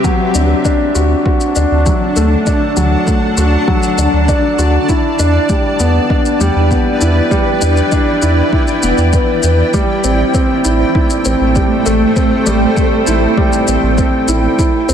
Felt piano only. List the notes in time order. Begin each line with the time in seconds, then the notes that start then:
0.04 F#3
0.35 D4
0.65 D4
0.95 F#4
1.25 F#4
1.56 D4
1.86 F#3
2.16 A3
2.47 D4
2.77 F#3
3.07 A3
3.37 F#4
3.68 F#3
3.98 D4
4.28 D4
4.59 F#4
4.89 E4
5.19 D4
5.49 G3
5.80 B3
6.10 D4
6.40 G3
6.71 B3
7.01 E4
7.31 G3
7.62 D4
7.92 D4
8.22 E4
8.53 E4
8.83 B3
9.13 B4
9.44 B4
9.74 G3
10.04 C4
10.34 C4
10.64 E4
10.95 E4
11.26 C4
11.56 G3
11.86 A3
12.16 C4
12.46 G3
12.77 A3
13.07 E4
13.37 G3
13.68 C4
13.98 C4
14.28 E4
14.59 E4
14.89 C4